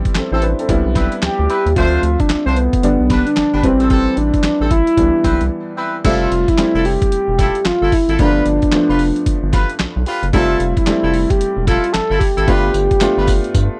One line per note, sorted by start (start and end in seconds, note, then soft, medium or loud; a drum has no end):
0.00 0.23 G3 medium
0.00 0.16 B3 medium
0.00 0.15 C4 medium
0.00 0.16 E4 medium
0.05 kick medium
0.05 closed hi-hat soft
0.15 0.22 A1 soft
0.15 0.32 C4 medium
0.15 0.31 A4 medium
0.15 snare loud
0.15 clap medium
0.15 closed hi-hat medium
0.32 0.54 A1 loud
0.32 0.43 C4 medium
0.32 0.42 E4 medium
0.32 0.43 G4 medium
0.32 0.43 A4 medium
0.32 0.42 C5 medium
0.42 0.59 D4 medium
0.42 0.58 B4 medium
0.42 closed hi-hat medium
0.59 0.85 C4 medium
0.59 0.85 A4 medium
0.59 closed hi-hat medium
0.69 0.83 C2 loud
0.69 1.57 G3 medium
0.69 1.57 B3 medium
0.69 1.57 D4 medium
0.69 1.58 E4 loud
0.69 kick loud
0.69 closed hi-hat medium
0.86 1.08 B1 medium
0.95 1.13 C4 medium
0.95 1.13 E4 medium
0.95 1.13 B4 medium
0.95 kick medium
0.95 snare medium
0.95 closed hi-hat medium
1.12 closed hi-hat medium
1.22 1.29 D2 soft
1.22 1.73 G4 loud
1.22 snare loud
1.22 clap medium
1.22 closed hi-hat medium
1.39 1.48 D2 loud
1.49 1.66 C4 medium
1.49 1.67 E4 medium
1.49 1.67 B4 medium
1.49 closed hi-hat medium
1.66 1.74 D#2 loud
1.66 closed hi-hat medium
1.76 1.98 D2 loud
1.76 2.64 F3 medium
1.76 2.64 A3 medium
1.76 2.65 C4 medium
1.76 2.01 D4 medium
1.76 2.01 F4 medium
1.76 2.21 F4 loud
1.76 2.02 C5 loud
1.76 2.65 E5 medium
1.76 kick loud
1.76 closed hi-hat medium
2.03 2.17 D2 medium
2.03 closed hi-hat medium
2.20 2.47 D4 loud
2.20 kick medium
2.20 closed hi-hat soft
2.30 2.36 C2 soft
2.30 snare loud
2.30 clap loud
2.30 closed hi-hat medium
2.46 2.68 C2 medium
2.46 2.55 C4 medium
2.46 2.57 D4 medium
2.46 2.57 F4 medium
2.46 2.57 C5 medium
2.56 3.22 B3 loud
2.56 closed hi-hat medium
2.73 kick loud
2.73 closed hi-hat medium
2.83 2.97 G1 loud
2.83 3.63 D3 medium
2.83 3.63 G3 medium
2.83 3.64 B3 medium
2.83 3.64 D4 medium
2.83 closed hi-hat medium
3.00 3.22 B1 medium
3.10 3.27 D4 medium
3.10 3.27 G4 medium
3.10 3.27 B4 medium
3.10 kick medium
3.10 snare medium
3.10 closed hi-hat medium
3.26 3.61 D4 medium
3.26 closed hi-hat medium
3.36 3.44 G1 soft
3.36 snare loud
3.36 clap medium
3.36 closed hi-hat medium
3.53 3.62 G1 medium
3.53 3.64 D4 medium
3.53 3.64 G4 medium
3.53 3.65 B4 medium
3.63 4.08 A1 loud
3.63 4.52 E3 medium
3.63 4.52 G3 medium
3.63 4.19 C4 loud
3.63 4.52 C4 medium
3.63 4.52 B4 medium
3.63 kick medium
3.63 closed hi-hat medium
3.80 3.89 C4 medium
3.80 3.89 G4 medium
3.80 3.89 A4 medium
3.80 closed hi-hat medium
3.90 4.15 C4 medium
3.90 4.16 G4 medium
3.90 4.16 A4 loud
3.90 kick loud
3.90 closed hi-hat medium
4.17 4.31 A1 medium
4.17 4.71 D4 loud
4.17 closed hi-hat medium
4.34 kick medium
4.34 closed hi-hat soft
4.43 4.50 A1 soft
4.43 snare loud
4.43 clap medium
4.43 closed hi-hat medium
4.60 4.83 A1 medium
4.60 4.71 C4 medium
4.60 4.72 G4 medium
4.60 4.72 A4 medium
4.71 5.74 E4 medium
4.71 kick loud
4.71 closed hi-hat medium
4.87 closed hi-hat medium
4.97 5.11 C2 loud
4.97 5.85 E3 medium
4.97 5.85 G3 medium
4.97 5.86 B3 medium
4.97 5.86 D4 medium
4.97 kick medium
4.97 closed hi-hat medium
5.24 5.38 B1 loud
5.24 5.41 C4 medium
5.24 5.41 E4 medium
5.24 5.41 B4 medium
5.24 kick medium
5.24 closed hi-hat medium
5.41 5.49 C2 loud
5.41 closed hi-hat medium
5.77 5.95 C4 medium
5.77 5.95 E4 medium
5.77 5.95 B4 medium
6.04 6.27 F1 loud
6.04 6.50 G3 medium
6.04 6.51 A3 medium
6.04 6.51 C4 medium
6.04 6.30 E4 medium
6.04 6.30 F4 medium
6.04 6.50 F4 loud
6.04 6.30 A4 loud
6.04 6.51 E5 medium
6.04 kick loud
6.04 closed hi-hat medium
6.04 crash medium
6.31 6.45 F1 loud
6.31 closed hi-hat medium
6.48 6.87 E4 loud
6.48 kick medium
6.48 closed hi-hat soft
6.58 6.65 F1 soft
6.58 7.46 G3 medium
6.58 7.46 A3 medium
6.58 7.46 C4 medium
6.58 7.47 E4 medium
6.58 snare loud
6.58 clap medium
6.58 closed hi-hat medium
6.75 6.97 F1 medium
6.75 6.86 E4 medium
6.75 6.86 F4 medium
6.75 6.86 A4 medium
6.85 7.67 G4 loud
6.85 open hi-hat medium
7.02 kick loud
7.02 closed hi-hat medium
7.11 7.18 E1 soft
7.11 closed hi-hat medium
7.28 7.50 E1 medium
7.38 7.56 E4 medium
7.38 7.56 F4 medium
7.38 7.56 A4 medium
7.38 kick loud
7.38 snare medium
7.38 closed hi-hat medium
7.55 closed hi-hat medium
7.65 7.72 G1 soft
7.65 7.94 F4 loud
7.65 snare loud
7.65 clap medium
7.65 closed hi-hat medium
7.82 7.90 G1 loud
7.82 7.93 E4 medium
7.82 7.93 F4 medium
7.82 7.93 A4 medium
7.92 8.19 E4 medium
7.92 kick medium
7.92 open hi-hat medium
8.08 8.17 G#1 medium
8.08 8.20 E4 medium
8.08 8.17 F4 medium
8.08 8.20 A4 medium
8.08 closed hi-hat medium
8.19 8.41 G1 loud
8.19 8.65 F3 medium
8.19 8.65 A3 medium
8.19 8.27 A#3 medium
8.19 8.65 D4 medium
8.19 10.03 D4 medium
8.19 8.44 F4 loud
8.19 8.44 G4 medium
8.19 8.44 B4 loud
8.19 kick loud
8.19 closed hi-hat medium
8.26 8.68 B3 medium
8.46 8.59 G1 loud
8.46 closed hi-hat medium
8.62 kick medium
8.62 closed hi-hat soft
8.72 8.79 F1 soft
8.72 9.61 F3 medium
8.72 9.61 A3 medium
8.72 9.61 B3 medium
8.72 9.61 D4 medium
8.72 snare loud
8.72 clap medium
8.72 closed hi-hat medium
8.89 9.11 F1 medium
8.89 9.00 F4 medium
8.89 9.00 G4 medium
8.89 9.01 B4 medium
8.99 open hi-hat medium
9.16 closed hi-hat medium
9.26 9.33 G1 medium
9.26 kick loud
9.26 closed hi-hat medium
9.43 9.65 G1 loud
9.53 9.70 F4 medium
9.53 9.70 G4 medium
9.53 9.70 B4 medium
9.53 kick loud
9.53 snare medium
9.53 closed hi-hat medium
9.69 closed hi-hat medium
9.79 9.86 B1 soft
9.79 snare loud
9.79 clap medium
9.79 closed hi-hat medium
9.96 10.05 B1 medium
10.06 10.24 F4 medium
10.06 10.24 G4 medium
10.06 10.24 B4 medium
10.06 open hi-hat medium
10.23 10.31 F#1 loud
10.23 closed hi-hat medium
10.33 10.55 F1 loud
10.33 10.79 G3 medium
10.33 10.79 A3 medium
10.33 10.79 C4 medium
10.33 10.42 D#4 medium
10.33 10.58 E4 medium
10.33 10.74 F4 medium
10.33 10.59 F4 medium
10.33 10.59 A4 loud
10.33 kick loud
10.33 closed hi-hat medium
10.41 10.83 E5 medium
10.60 10.74 F1 loud
10.60 closed hi-hat medium
10.77 11.31 E4 medium
10.77 kick medium
10.77 closed hi-hat soft
10.87 10.93 F1 soft
10.87 11.75 G3 medium
10.87 11.75 A3 medium
10.87 11.75 C4 medium
10.87 11.75 E4 medium
10.87 snare loud
10.87 clap medium
10.87 closed hi-hat medium
11.03 11.25 F1 loud
11.03 11.14 E4 medium
11.03 11.15 F4 medium
11.03 11.15 A4 medium
11.14 open hi-hat medium
11.30 11.65 G4 loud
11.30 kick loud
11.30 closed hi-hat medium
11.40 11.47 E1 medium
11.40 closed hi-hat medium
11.57 11.79 E1 medium
11.66 11.84 E4 medium
11.66 11.94 F4 loud
11.66 11.84 F4 medium
11.66 11.84 A4 medium
11.66 kick loud
11.66 snare medium
11.66 closed hi-hat medium
11.84 closed hi-hat medium
11.93 12.01 G1 soft
11.93 12.21 A4 loud
11.93 snare loud
11.93 clap loud
11.93 closed hi-hat medium
12.10 12.19 G1 loud
12.10 12.21 E4 medium
12.10 12.22 F4 medium
12.10 12.22 A4 medium
12.19 13.80 G4 loud
12.19 kick loud
12.19 open hi-hat medium
12.37 12.46 G#1 medium
12.37 12.48 E4 medium
12.37 12.46 F4 medium
12.37 12.49 A4 medium
12.37 closed hi-hat medium
12.47 12.70 G1 loud
12.47 12.93 A3 medium
12.47 12.93 B3 medium
12.47 12.93 D4 medium
12.47 12.73 F4 medium
12.47 12.94 F4 medium
12.47 12.73 G4 medium
12.47 12.73 B4 loud
12.47 kick loud
12.47 closed hi-hat medium
12.74 12.88 G1 loud
12.74 closed hi-hat medium
12.74 tambourine medium
12.91 kick medium
12.91 closed hi-hat soft
13.01 13.08 G1 medium
13.01 13.80 A3 loud
13.01 13.80 B3 medium
13.01 13.80 D4 medium
13.01 13.80 F4 loud
13.01 snare loud
13.01 clap medium
13.01 closed hi-hat medium
13.01 tambourine medium
13.17 13.40 G1 medium
13.17 13.29 F4 medium
13.17 13.29 G4 medium
13.17 13.29 B4 medium
13.27 kick loud
13.27 open hi-hat medium
13.27 tambourine medium
13.44 closed hi-hat medium
13.54 13.68 G2 loud
13.54 kick loud
13.54 closed hi-hat medium
13.54 tambourine medium